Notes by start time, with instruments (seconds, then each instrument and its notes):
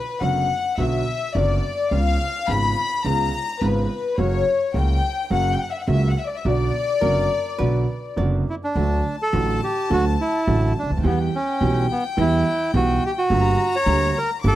Already playing: violin section B4
0.21 upright bass F#1, grand piano F#1 F#2 D3 F#3 B3 F#4, violin section F#5
0.78 upright bass B1, grand piano B1 B2 D3 F#3 B3 F#4, violin section E5
1.35 upright bass F#1, grand piano F#1 F#2 D3 F#3 B3 F#4, violin section D5
1.91 upright bass C#2, grand piano C#2 C#3 G#3 B3 F4, violin section F5
2.48 upright bass G#1, grand piano G#1 G#2 C#3 G#3 B3 F4, violin section B5
3.04 upright bass C#2, grand piano C#2 C#3 G#3 B3 F4, violin section A#5
3.61 upright bass G#1, grand piano G#1 G#2 C#3 G#3 B3 F4, violin section B4
4.18 upright bass F#1, grand piano F#2 C#3 F#3 A#3 F#4, violin section C#5
4.74 upright bass C#2, grand piano C#2 C#3 F#3 A#3 F#4, violin section G5
5.30 upright bass F#1, grand piano F#2 C#3 F#3 A#3 F#4, violin section F#5
5.54 violin section G5
5.62 violin section F#5
5.71 violin section E5
5.80 violin section F#5
5.88 upright bass C#2, grand piano C#2 C#3 F#3 A#3 F#4, violin section E5
6.10 violin section F#5
6.19 violin section E5
6.27 violin section D5
6.36 violin section E5
6.45 upright bass B1, grand piano B1 B2 D3 F#3 B3 F#4, violin section D5
7.01 grand piano F#1 F#2 D3 F#3 B3 F#4, upright bass F#1, hollow-body jazz guitar A#4
7.58 grand piano B1 B2 D3 F#3 B3 F#4, upright bass B1, hollow-body jazz guitar B4
8.16 grand piano F#1 F#2 D3 F#3 B3 F#4, upright bass F#1, hollow-body jazz guitar D5
8.49 bandoneon E4
8.64 bandoneon D4
8.76 upright bass D2, grand piano D2 D3 F#3 A3 F#4, violin section A5
9.22 bandoneon A4
9.33 upright bass A1, grand piano A1 A2 D3 F#3 A3 F#4
9.64 bandoneon G4
9.90 grand piano D2 D3 F#3 A3 F#4, upright bass D2, bandoneon F#4
10.21 bandoneon E4
10.47 upright bass A1, grand piano A1 A2 D3 F#3 A3 F#4
10.79 bandoneon D4
10.83 upright bass C#2, grand piano C#2
10.90 grand piano D2, upright bass D2
10.97 upright bass D#2, grand piano D#2
11.04 grand piano E2 E3 G3 B3 G4, upright bass E2, bandoneon B3, violin section G5
11.35 bandoneon C#4
11.61 upright bass B1, grand piano B1 B2 E3 G3 B3 G4
11.92 bandoneon B3
12.17 grand piano E2 E3 G3 B3 G4, upright bass E2, bandoneon E4
12.74 upright bass B1, grand piano B1 B2 E3 G3 B3 G4, bandoneon F#4
13.06 bandoneon G4
13.18 bandoneon F#4
13.30 upright bass G1, grand piano G1 G2 D3 G3 A#3 G4, violin section A#5
13.76 bandoneon C#5
13.86 upright bass D2, grand piano D2 D3 G3 A#3 G4
14.18 bandoneon A#4
14.43 upright bass G1, grand piano G1 G2 D3 G3 A#3 G4, violin section D6
14.47 bandoneon A4